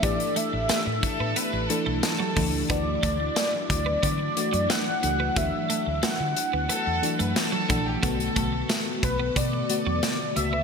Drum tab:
HH |xxx-x-x-x-x-x-o-|x-x-x-x-x-xxx-x-|x-x-x-x-x-xxx-x-|xxx-x-x-x-x-x-x-|
TB |----x-------x---|----x-------x---|----x-------x---|----x-------x---|
SD |----o-------o---|----o-------o---|----o-------o---|----o-------o---|
BD |o-----o-------o-|o-o---o-o-------|o-------------o-|o-o---o-o-------|